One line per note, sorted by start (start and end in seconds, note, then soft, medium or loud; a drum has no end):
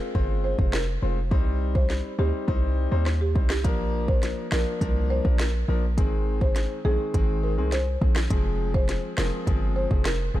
0.00 0.12 G#3 medium
0.00 0.12 C4 medium
0.00 0.13 F4 medium
0.00 0.13 C5 medium
0.15 0.54 G1 loud
0.15 0.55 G#3 medium
0.15 0.55 C4 medium
0.15 0.55 F4 medium
0.15 0.55 C5 loud
0.15 kick medium
0.44 0.55 C5 medium
0.58 0.98 F1 medium
0.58 0.73 G#3 medium
0.58 0.73 C4 medium
0.58 0.73 F4 medium
0.58 0.73 C5 medium
0.58 kick loud
0.73 1.14 A#4 medium
0.73 cross-stick medium
0.73 snare loud
1.02 1.33 F1 medium
1.02 1.17 G#3 medium
1.02 1.17 C4 medium
1.02 1.17 F4 medium
1.02 1.17 C5 medium
1.31 2.01 C2 loud
1.31 2.12 G3 medium
1.31 2.12 C4 medium
1.31 2.12 D#4 medium
1.31 2.12 C5 loud
1.31 kick loud
1.75 1.97 C5 medium
1.75 kick medium
1.90 snare medium
2.18 2.32 D2 loud
2.18 2.45 G3 medium
2.18 2.45 C4 medium
2.18 2.46 D#4 medium
2.18 2.41 G4 medium
2.18 2.46 C5 medium
2.48 2.87 C2 loud
2.48 2.88 G3 medium
2.48 2.88 C4 medium
2.48 2.88 D#4 medium
2.48 2.88 C5 loud
2.48 kick medium
2.91 3.37 D#2 loud
2.91 3.06 G3 medium
2.91 3.06 C4 medium
2.91 3.06 D#4 medium
2.91 3.06 C5 medium
3.06 cross-stick medium
3.06 snare medium
3.21 3.32 G4 medium
3.35 3.66 C2 medium
3.35 3.50 G3 medium
3.35 3.50 C4 medium
3.35 3.50 D#4 medium
3.35 3.50 C5 medium
3.35 kick medium
3.49 3.61 G4 medium
3.49 cross-stick medium
3.49 snare loud
3.64 4.34 A#1 loud
3.64 4.45 F3 medium
3.64 4.45 A#3 medium
3.64 4.45 D4 medium
3.64 4.45 A#4 loud
3.64 kick loud
3.64 closed hi-hat medium
4.08 4.30 C5 medium
4.08 kick medium
4.23 cross-stick medium
4.23 snare medium
4.23 closed hi-hat medium
4.51 4.65 A#1 medium
4.51 4.78 F3 medium
4.51 4.78 A#3 medium
4.51 4.79 D4 medium
4.51 4.74 A#4 medium
4.51 4.79 A#4 medium
4.51 cross-stick medium
4.51 snare loud
4.81 5.20 C2 loud
4.81 5.21 F3 medium
4.81 5.21 A#3 medium
4.81 5.21 D4 medium
4.81 5.21 A#4 loud
4.81 kick medium
4.81 closed hi-hat medium
5.10 5.21 C5 medium
5.24 5.64 A#1 medium
5.24 5.39 F3 medium
5.24 5.39 A#3 medium
5.24 5.39 D4 medium
5.24 5.39 A#4 medium
5.24 kick loud
5.39 5.80 A#4 medium
5.39 cross-stick medium
5.39 snare loud
5.39 closed hi-hat medium
5.68 5.99 A#1 medium
5.68 5.83 F3 medium
5.68 5.83 A#3 medium
5.68 5.83 D4 medium
5.68 5.83 A#4 medium
5.97 6.67 G#1 loud
5.97 6.78 D#3 medium
5.97 6.78 G#3 medium
5.97 6.78 C4 medium
5.97 6.78 G#4 loud
5.97 kick loud
5.97 closed hi-hat medium
6.41 6.63 C5 medium
6.41 kick medium
6.56 cross-stick medium
6.56 snare medium
6.56 closed hi-hat medium
6.85 6.98 A#1 medium
6.85 7.12 D#3 medium
6.85 7.12 G#3 medium
6.85 7.12 C4 medium
6.85 7.07 G#4 medium
6.85 7.12 G#4 medium
7.14 7.59 G#1 medium
7.14 7.54 D#3 medium
7.14 7.54 G#3 medium
7.14 7.54 C4 medium
7.14 7.54 G#4 loud
7.14 kick medium
7.14 closed hi-hat medium
7.44 7.54 A#4 medium
7.58 7.97 C2 medium
7.58 7.72 D#3 medium
7.58 7.72 G#3 medium
7.58 7.72 C4 medium
7.58 7.72 G#4 medium
7.72 8.13 C5 medium
7.72 snare medium
7.72 closed hi-hat medium
8.01 8.28 A#1 loud
8.01 8.16 D#3 medium
8.01 8.16 G#3 medium
8.01 8.16 C4 medium
8.01 8.16 G#4 medium
8.01 kick medium
8.15 cross-stick medium
8.15 snare loud
8.30 9.00 F1 loud
8.30 9.11 F3 medium
8.30 9.11 G#3 medium
8.30 9.11 C4 medium
8.30 9.11 G#4 loud
8.30 kick loud
8.30 closed hi-hat medium
8.74 8.96 C5 medium
8.74 kick medium
8.89 cross-stick medium
8.89 snare medium
8.89 closed hi-hat medium
9.17 9.31 F1 medium
9.17 9.44 F3 medium
9.17 9.45 G#3 medium
9.17 9.45 C4 medium
9.17 9.45 G#4 medium
9.17 9.40 A#4 medium
9.17 cross-stick medium
9.17 snare loud
9.47 9.86 G1 loud
9.47 9.87 F3 medium
9.47 9.87 G#3 medium
9.47 9.87 C4 medium
9.47 9.87 G#4 loud
9.47 kick medium
9.47 closed hi-hat medium
9.76 9.87 C5 medium
9.91 10.30 F1 loud
9.91 10.05 F3 medium
9.91 10.05 G#3 medium
9.91 10.05 C4 medium
9.91 10.05 G#4 medium
9.91 kick loud
10.05 10.40 A#4 medium
10.05 cross-stick medium
10.05 snare loud
10.05 closed hi-hat medium
10.34 10.40 F1 medium
10.34 10.40 F3 medium
10.34 10.40 G#3 medium
10.34 10.40 C4 medium
10.34 10.40 G#4 medium